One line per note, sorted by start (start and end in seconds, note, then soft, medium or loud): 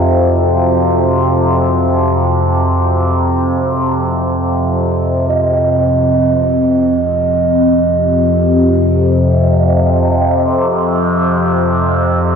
0.00 5.27 F2 medium
0.00 5.28 C3 medium
0.00 5.30 D#4 medium
0.00 5.29 F4 medium
0.00 5.28 F#4 medium
0.00 5.29 F5 medium
5.29 12.36 F2 medium
5.29 12.36 C3 medium
5.29 12.36 D#5 medium